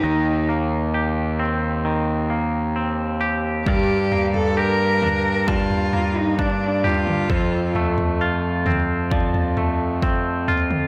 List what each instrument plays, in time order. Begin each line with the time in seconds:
Already playing: clean electric guitar A#3 G4, cello D#4, pedal steel guitar G4 C5 A#5
0.04 picked electric bass D#2, clean electric guitar D#3, pedal steel guitar D#5
0.49 clean electric guitar A#3
0.94 clean electric guitar G4
1.39 clean electric guitar C4
1.85 clean electric guitar D#3
2.30 clean electric guitar A#3
2.76 clean electric guitar C4
3.21 clean electric guitar G4
3.66 clean electric guitar G2, picked electric bass G2, cello G4, pedal steel guitar A#4 D5, kick, floor tom
4.12 clean electric guitar A#3, floor tom
4.34 cello A4, floor tom
4.57 clean electric guitar G4, cello A#4
5.02 clean electric guitar D4, floor tom, mid tom
5.47 clean electric guitar G3, cello F4, pedal steel guitar A5, kick, floor tom
5.70 floor tom
5.93 clean electric guitar A#3, floor tom
6.17 cello D#4
6.39 clean electric guitar D4, cello D4, kick
6.84 cello F4, clean electric guitar G4, floor tom
7.07 mid tom
7.29 picked electric bass F2, clean electric guitar F2, pedal steel guitar F4 A4 C5, kick, floor tom
7.75 clean electric guitar A3, floor tom
7.98 floor tom
8.21 clean electric guitar F4
8.66 clean electric guitar C4, floor tom, mid tom
9.11 clean electric guitar F3, pedal steel guitar D5, kick, floor tom
9.34 floor tom
9.57 clean electric guitar A3, floor tom
10.02 clean electric guitar C4, kick
10.48 clean electric guitar F4, floor tom
10.71 mid tom